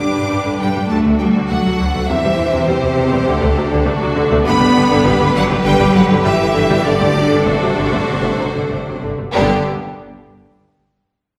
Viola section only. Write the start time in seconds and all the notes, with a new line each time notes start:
Already playing: D4
0.14 D3
0.30 G3
0.45 D3
0.60 D3
0.75 G3
0.90 D3
1.05 A3
1.20 F#3
1.35 D3
1.50 A3
1.65 F#3
1.80 D3
1.95 A3
2.09 C3
2.24 G3
2.39 E3
2.54 C3
2.68 G3 C4
2.83 E3
2.97 C3
3.12 G3
3.27 D3 D4
3.42 A3
3.56 F#3
3.71 D3
3.86 A3
4.01 F#3
4.16 D3
4.30 A3
4.45 D3
4.60 G3
4.75 D3
4.90 D3
5.05 G3
5.20 D3
5.35 D3
5.50 G3
5.65 D3
5.80 G3
5.95 D3
6.09 D3
6.24 G3
6.40 D3
6.54 D3
6.69 G3
6.85 D3 D4
7.00 A3
7.15 F#3
7.31 D3
7.46 A3
7.61 F#3
7.77 D3
7.92 A3
8.07 D3
8.24 A3
8.39 F#3
8.55 D3
8.71 A3
8.86 F#3
9.03 D3
9.19 A3
9.34 D3 B3